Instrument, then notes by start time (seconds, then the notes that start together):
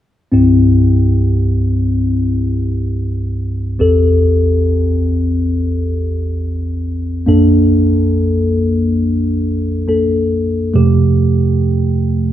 tine electric piano
0.32 C2 G2 C4 E4 G4
3.79 A1 E2 C4 G4 A4
7.26 A#1 F2 A#3 D4 A4
9.88 A#3 D4 A4
10.74 F2 C3 F3 A3 G4